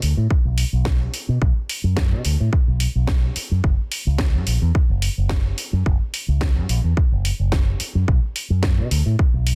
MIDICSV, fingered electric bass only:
0, 0, Header, 1, 3, 480
1, 0, Start_track
1, 0, Tempo, 555556
1, 1223, Time_signature, 4, 2, 24, 8
1, 8251, End_track
2, 0, Start_track
2, 0, Title_t, "Fingered electric bass"
2, 0, Program_c, 0, 33
2, 24, Note_on_c, 0, 38, 90
2, 109, Note_off_c, 0, 38, 0
2, 150, Note_on_c, 0, 45, 95
2, 224, Note_off_c, 0, 45, 0
2, 390, Note_on_c, 0, 35, 82
2, 543, Note_off_c, 0, 35, 0
2, 629, Note_on_c, 0, 35, 77
2, 921, Note_off_c, 0, 35, 0
2, 1110, Note_on_c, 0, 47, 87
2, 1184, Note_off_c, 0, 47, 0
2, 1223, Note_on_c, 0, 35, 91
2, 1308, Note_off_c, 0, 35, 0
2, 1587, Note_on_c, 0, 42, 82
2, 1832, Note_on_c, 0, 47, 91
2, 1845, Note_off_c, 0, 42, 0
2, 1905, Note_off_c, 0, 47, 0
2, 1945, Note_on_c, 0, 38, 96
2, 2030, Note_off_c, 0, 38, 0
2, 2076, Note_on_c, 0, 45, 98
2, 2147, Note_off_c, 0, 45, 0
2, 2313, Note_on_c, 0, 35, 80
2, 2464, Note_off_c, 0, 35, 0
2, 2552, Note_on_c, 0, 35, 80
2, 2842, Note_off_c, 0, 35, 0
2, 3035, Note_on_c, 0, 42, 86
2, 3106, Note_off_c, 0, 42, 0
2, 3144, Note_on_c, 0, 30, 92
2, 3229, Note_off_c, 0, 30, 0
2, 3512, Note_on_c, 0, 37, 87
2, 3755, Note_on_c, 0, 42, 92
2, 3768, Note_off_c, 0, 37, 0
2, 3826, Note_off_c, 0, 42, 0
2, 3862, Note_on_c, 0, 34, 93
2, 3948, Note_off_c, 0, 34, 0
2, 3990, Note_on_c, 0, 40, 101
2, 4064, Note_off_c, 0, 40, 0
2, 4231, Note_on_c, 0, 30, 86
2, 4383, Note_off_c, 0, 30, 0
2, 4473, Note_on_c, 0, 30, 77
2, 4763, Note_off_c, 0, 30, 0
2, 4949, Note_on_c, 0, 42, 86
2, 5024, Note_off_c, 0, 42, 0
2, 5065, Note_on_c, 0, 30, 90
2, 5149, Note_off_c, 0, 30, 0
2, 5427, Note_on_c, 0, 37, 87
2, 5668, Note_on_c, 0, 42, 94
2, 5681, Note_off_c, 0, 37, 0
2, 5743, Note_off_c, 0, 42, 0
2, 5781, Note_on_c, 0, 34, 98
2, 5867, Note_off_c, 0, 34, 0
2, 5909, Note_on_c, 0, 40, 100
2, 5984, Note_off_c, 0, 40, 0
2, 6151, Note_on_c, 0, 30, 86
2, 6303, Note_off_c, 0, 30, 0
2, 6388, Note_on_c, 0, 30, 75
2, 6680, Note_off_c, 0, 30, 0
2, 6869, Note_on_c, 0, 42, 86
2, 6943, Note_off_c, 0, 42, 0
2, 6981, Note_on_c, 0, 35, 92
2, 7068, Note_off_c, 0, 35, 0
2, 7345, Note_on_c, 0, 42, 82
2, 7587, Note_on_c, 0, 47, 92
2, 7600, Note_off_c, 0, 42, 0
2, 7663, Note_off_c, 0, 47, 0
2, 7699, Note_on_c, 0, 38, 96
2, 7786, Note_off_c, 0, 38, 0
2, 7826, Note_on_c, 0, 45, 98
2, 7902, Note_off_c, 0, 45, 0
2, 8068, Note_on_c, 0, 35, 86
2, 8222, Note_off_c, 0, 35, 0
2, 8251, End_track
3, 0, Start_track
3, 0, Title_t, "Muted fingered electric bass strokes"
3, 265, Note_on_c, 9, 29, 42
3, 351, Note_off_c, 9, 29, 0
3, 2902, Note_on_c, 9, 29, 38
3, 2989, Note_off_c, 9, 29, 0
3, 6740, Note_on_c, 9, 29, 39
3, 6826, Note_off_c, 9, 29, 0
3, 7942, Note_on_c, 9, 29, 41
3, 8028, Note_off_c, 9, 29, 0
3, 8251, End_track
0, 0, End_of_file